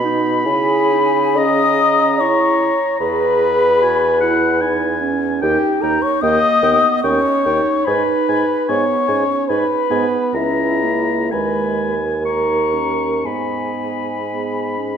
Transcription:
Already playing: bassoon B2, oboe B5
0.04 clarinet D#4
0.45 bassoon C#3, clarinet E4, french horn G#4, flute G#5
0.91 clarinet D#4
1.37 clarinet C#4, french horn D#5, oboe A#5, flute D#6
2.20 clarinet E4, french horn C#5, flute C#6
3.00 bassoon E2, clarinet G#4, french horn B4, flute B5
3.81 clarinet F#4, oboe G#5
4.21 clarinet E4, oboe F#5
4.61 clarinet D#4, oboe G#5
5.01 clarinet C#4
5.41 bassoon D#2, clarinet D#4, french horn G4, flute G5, oboe G5
5.82 bassoon D#2, french horn A#4, oboe G5, flute A#5
6.02 french horn C#5, flute C#6
6.21 bassoon D#2, clarinet A#3, french horn D#5, oboe G5, flute D#6
6.62 bassoon D#2, clarinet B3, oboe G5
7.04 bassoon D#2, clarinet C#4, french horn C#5, oboe G5, flute C#6
7.46 bassoon D#2, clarinet D#4, oboe G5
7.85 bassoon G#2, clarinet D#4, french horn B4, oboe G#5, flute B5
8.29 bassoon G#2, oboe G#5
8.68 bassoon G#2, clarinet B3, french horn C#5, oboe G#5, flute C#6
9.08 bassoon G#2, clarinet C#4, oboe G#5
9.48 bassoon G#2, clarinet D#4, french horn B4, oboe G#5, flute B5
9.90 bassoon G#2, clarinet B3, oboe G#5
10.34 bassoon C#2, clarinet C#4, french horn E4, flute E5, oboe A#5
10.83 clarinet A#3
11.31 bassoon D#2, clarinet G#3, french horn B4, oboe G#5, flute B5
12.24 clarinet D#4, french horn A#4, flute A#5, oboe C#6
12.73 clarinet C#4
13.25 bassoon G#2, clarinet B3, french horn G#4, flute G#5, oboe B5
14.29 clarinet B3
14.78 clarinet C#4

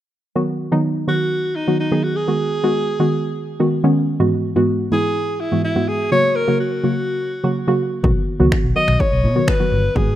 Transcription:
0.36 synth pluck D#3 F#3 B3 F#4
0.72 synth pluck D#3 F#3 B3 D#4
1.07 synth pluck D#3 F#3 B3 F#4, alto saxophone F#4
1.56 alto saxophone D#4
1.67 synth pluck D#3 F#3 B3 F#4
1.80 alto saxophone D#4
1.91 synth pluck D#3 F#3 B3 G#4
2.04 alto saxophone F#4
2.16 alto saxophone G#4
2.28 synth pluck D#3 G#3 B3 F#4
2.63 synth pluck D#3 G#3 B3 F#4
2.99 synth pluck D#3 G#3 B3 F#4
3.60 synth pluck D#3 G#3 B3 F#4
3.84 synth pluck D#3 G#3 B3 C#4
4.20 synth pluck G#2 E3 G#3 B3 F#4
4.56 synth pluck G#2 E3 G#3 B3 F#4
4.91 synth pluck G#2 E3 G#3 B3 E4, alto saxophone G#4
5.40 alto saxophone E4
5.52 synth pluck G#2 E3 G#3 B3 F#4
5.64 alto saxophone E4
5.76 synth pluck G#2 E3 G#3 B3 F#4
5.88 alto saxophone G#4
6.12 synth pluck C#3 F#3 A#3 F#4, alto saxophone C#5
6.36 alto saxophone A#4
6.48 synth pluck C#3 F#3 A#3 F#4
6.60 alto saxophone F#4
6.83 synth pluck C#3 F#3 A#3 F#4
7.44 synth pluck C#3 F#3 A#3 F#4
7.67 synth pluck C#3 F#3 A#3 F#4
8.03 fingered electric bass B1, synth pluck D#3 F#3 B3 F#4, kick
8.39 fingered electric bass C#2, synth pluck D#3 F#3 B3 F#4
8.52 finger snap, kick
8.64 fingered electric bass B1
8.76 synth pluck D#3 F#3 B3 F#4, alto saxophone D#5
8.88 fingered electric bass B1, finger snap
9.00 alto saxophone C#5, kick
9.12 fingered electric bass B1
9.24 fingered electric bass B2
9.36 synth pluck D#3 F#3 B3 F#4
9.48 alto saxophone B4, finger snap, kick
9.60 synth pluck D#3 F#3 B3 F#4
9.72 fingered electric bass G1
9.95 fingered electric bass G#1, synth pluck D#3 G#3 B3 F#4, alto saxophone G#4, kick

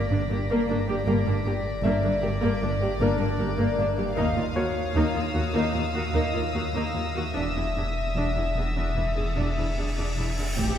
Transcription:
Already playing: sub bass G1, violin section D5 A#6 B6
0.10 cello section G2, viola section A#3 D4
0.29 double bass section G1, cello section G2, viola section A#3 G4
0.48 cello section G2, viola section A#3
0.68 double bass section G1, cello section G2, viola section A#3 D4
0.87 cello section G2, viola section A#3 G4
1.06 sub bass G1, double bass section G1, cello section G2, viola section A#3, violin section D5
1.26 cello section G2, viola section A#3 D4
1.45 double bass section G1, cello section G2, viola section A#3 G4
1.83 double bass section G1, cello section G2, viola section A#3, grand piano E5
2.03 cello section G2, viola section A#3 D4
2.22 double bass section G1, cello section G2, viola section A#3 G4
2.42 cello section G2, viola section A#3
2.62 double bass section G1, cello section G2, viola section A#3 D4
2.81 cello section G2, viola section A#3 G4
3.01 double bass section G1, cello section G2, viola section A#3, grand piano D4 A#4
3.20 cello section G2, viola section A#3 D4
3.39 double bass section G1, cello section G2, viola section A#3 G4
3.58 cello section G2, viola section A#3
3.78 double bass section G1, cello section G2, viola section A#3 D4
3.97 cello section G2, viola section A#3 G4
4.16 cello section D#2, sub bass D#2, double bass section D#2, viola section A#3 D#4, violin section F5 D#6
4.36 cello section D#2, viola section A#3 F4
4.55 cello section D#2, double bass section D#2, viola section A#3 F#4, grand piano C#5
4.94 cello section D#2, double bass section D#2, viola section A#3 D#4, violin section E6
5.14 cello section D#2, viola section A#3 F4
5.33 double bass section D#2, cello section D#2, viola section A#3 F#4
5.54 cello section D#2, viola section A#3 D#4
5.74 cello section D#2, double bass section D#2, viola section A#3 F4, violin section A#6
5.94 cello section D#2, viola section A#3 F#4
6.13 cello section D#2, double bass section D#2, viola section A#3 D#4
6.34 cello section D#2, viola section A#3 F4
6.53 double bass section D#2, cello section D#2, viola section A#3 F#4
6.74 cello section D#2, viola section A#3 D#4
6.94 double bass section D#2, cello section D#2, viola section A#3 F4
7.15 cello section D#2, viola section A#3 F#4
7.34 double bass section E1, sub bass E1, cello section E2, viola section D4, violin section E5, cymbal swell
7.55 cello section E2, viola section D4 E4
7.75 double bass section E1, cello section E2, viola section D4 G#4
8.15 double bass section E1, cello section E2, viola section D4
8.36 cello section E2, viola section D4 E4
8.56 double bass section E1, cello section E2, viola section D4 G#4
8.76 cello section E2, viola section D4
8.96 double bass section E1, cello section E2, viola section D4 E4
9.05 violin section A6
9.16 cello section E2, viola section D4 G#4
9.36 double bass section E1, cello section E2, viola section D4
9.57 cello section E2, viola section D4 E4
9.77 double bass section E1, cello section E2, viola section D4 G#4, grand piano E5
9.97 cello section E2, viola section D4
10.17 double bass section E1, cello section E2, viola section D4 E4
10.38 cello section E2, viola section D4 G#4
10.58 double bass section A1, sub bass A1, cello section A2, viola section C4, violin section G4 E5, impact

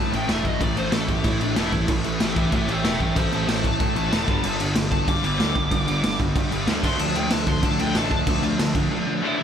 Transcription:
Already playing: picked electric bass A2, distorted electric guitar A2 E3 A3, lead electric guitar A5
0.12 picked electric bass A1, distorted electric guitar A2 E3 A3, lead electric guitar G5, crash
0.28 picked electric bass E1, distorted electric guitar A2 E3 A3, lead electric guitar E5, snare, crash
0.44 picked electric bass A1, distorted electric guitar A2 E3 A3, lead electric guitar D#5, kick, crash
0.60 picked electric bass A1, distorted electric guitar A2 E3 A3, lead electric guitar D5, kick, crash
0.76 distorted electric guitar A2 E3 A3, lead electric guitar C5, crash
0.91 picked electric bass A1, distorted electric guitar A2 E3 A3, lead electric guitar A4, snare, crash
1.08 distorted electric guitar A2 E3 A3, lead electric guitar G4, kick, crash
1.24 picked electric bass A2, distorted electric guitar A2 E3 A3, lead electric guitar E4, kick, crash
1.40 picked electric bass A1, distorted electric guitar A2 E3 A3, lead electric guitar D4, crash
1.56 picked electric bass E1, distorted electric guitar A2 E3 A3, lead electric guitar E4, snare, crash
1.72 picked electric bass A1, distorted electric guitar A2 E3 A3, kick, crash
1.88 picked electric bass A1, distorted electric guitar A2 E3 A3, kick, crash
2.04 distorted electric guitar A2 E3 A3, crash
2.19 picked electric bass A1, distorted electric guitar A2 E3 A3, lead electric guitar G4, snare, crash
2.23 lead electric guitar E5
2.35 distorted electric guitar A2 E3 A3, kick, crash
2.39 lead electric guitar G4 E5
2.51 distorted electric guitar A2 E3 A3, picked electric bass A2, lead electric guitar G4, kick, crash
2.55 lead electric guitar E5
2.67 picked electric bass A1, distorted electric guitar A2 E3 A3, lead electric guitar E5, crash
2.71 lead electric guitar G5
2.84 picked electric bass E1, distorted electric guitar A2 E3 A3, lead electric guitar E5, snare, crash
2.88 lead electric guitar G5
3.00 picked electric bass A1, distorted electric guitar A2 E3 A3, lead electric guitar E5 G5, kick, crash
3.16 picked electric bass A1, distorted electric guitar A2 E3 A3, lead electric guitar C5 A5, kick, crash
3.32 distorted electric guitar A2 E3 A3, lead electric guitar C5 A5, crash
3.48 picked electric bass A1, distorted electric guitar A2 E3 A3, lead electric guitar C5 A5, snare, crash
3.64 distorted electric guitar A2 E3 A3, lead electric guitar A5, kick, crash
3.80 distorted electric guitar A2 E3 A3, picked electric bass A2, kick, crash
3.96 picked electric bass A1, distorted electric guitar A2 E3 A3, crash
4.12 picked electric bass E1, distorted electric guitar A2 E3 A3, snare, crash
4.28 picked electric bass G1, distorted electric guitar G2 D3 G3, kick, crash
4.43 picked electric bass G1, distorted electric guitar G2 D3 G3, crash
4.60 distorted electric guitar G2 D3 G3, crash
4.75 picked electric bass G1, distorted electric guitar G2 D3 G3, snare, crash
4.92 distorted electric guitar G2 D3 G3, lead electric guitar A5, kick, crash
5.07 picked electric bass G2, distorted electric guitar G2 D3 G3, lead electric guitar D6, kick, crash
5.24 picked electric bass G1, distorted electric guitar G2 D3 G3, lead electric guitar D6, crash
5.40 picked electric bass D2, distorted electric guitar G2 D3 G3, snare, crash
5.55 picked electric bass G1, distorted electric guitar G2 D3 G3, kick, crash
5.71 picked electric bass G1, distorted electric guitar G2 D3 G3, kick, crash
5.87 distorted electric guitar G2 D3 G3, crash
6.03 picked electric bass G1, distorted electric guitar G2 D3 G3, snare, crash
6.20 distorted electric guitar G2 D3 G3, kick, crash
6.36 picked electric bass G2, distorted electric guitar G2 D3 G3, kick, crash
6.51 picked electric bass G1, distorted electric guitar G2 D3 G3, crash
6.67 picked electric bass D2, distorted electric guitar G2 D3 G3, snare, crash
6.83 picked electric bass D2, distorted electric guitar D3 F3 A3 D4, lead electric guitar C6, kick, crash
6.99 picked electric bass D2, distorted electric guitar D3 F3 A3 D4, lead electric guitar A5, crash
7.15 distorted electric guitar D3 F3 A3 D4, lead electric guitar G5, crash
7.31 picked electric bass D2, distorted electric guitar D3 F3 A3 D4, lead electric guitar A5, snare, crash
7.46 distorted electric guitar D3 F3 A3 D4, lead electric guitar C6, kick, crash
7.63 picked electric bass D3, distorted electric guitar D3 F3 A3 D4, lead electric guitar A5, kick, crash
7.79 picked electric bass D2, distorted electric guitar D3 F3 A3 D4, lead electric guitar G5, crash
7.95 picked electric bass A1, distorted electric guitar D3 F3 A3 D4, lead electric guitar A5, snare, crash
8.11 picked electric bass D2, distorted electric guitar D3 F3 A3 D4, lead electric guitar A5, kick, crash
8.27 picked electric bass D2, distorted electric guitar D3 F3 A3 D4, kick, crash
8.43 distorted electric guitar D3 F3 A3 D4, crash
8.59 picked electric bass D2, distorted electric guitar D3 F3 A3 D4, snare, crash
8.75 distorted electric guitar D3 F3 A3 D4, kick, crash
8.91 distorted electric guitar D3 F3 A3 D4
9.07 distorted electric guitar D3 F3 A3 D4
9.22 distorted electric guitar D3 F3 A3 D4, lead electric guitar E4 E5
9.38 distorted electric guitar D3 F3 A3 D4

